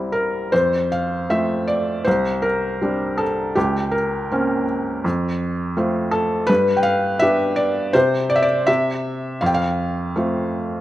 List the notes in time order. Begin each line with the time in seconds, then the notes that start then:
Already playing: C2 G3 C4 E4
0.12 A#4
0.52 F2 C5
0.92 F5
1.30 A3 C4 F4 E5
1.68 D5
2.05 C2 C5
2.42 A#4
2.82 G3 C4 D4
3.17 A4
3.55 C#2 G4
3.91 A#4
4.31 A#3 C4 C#4
5.04 F2
5.77 A3 C4 F4
6.11 A4
6.47 G2 B4
6.77 G5
6.83 F5
7.19 B3 D4 G4 E5
7.56 D5
7.93 C3 C5
8.30 D5
8.36 E5
8.42 D5
8.67 C3 E5
9.41 F2 F5
9.46 G5
9.54 F5
10.16 A3 C4 F4